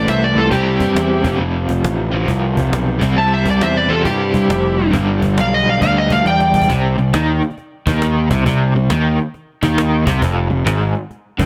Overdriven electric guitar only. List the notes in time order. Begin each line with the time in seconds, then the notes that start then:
Already playing: A2 E3 A3
0.51 C3 G3 C4
1.23 F2 C3 F3
2.12 F2 C3 F3
2.99 C3 G3 C4
3.89 C3 G3 C4
4.91 G2 D3 G3
5.79 G2 D3
5.83 G3
6.69 C3
6.98 C3
7.14 D#3
7.87 D#3
8.31 C3
8.46 C3
8.76 C3
8.90 D#3
9.63 D#3
10.06 C3
10.22 F2
10.50 F2
10.65 G#2
11.39 G#2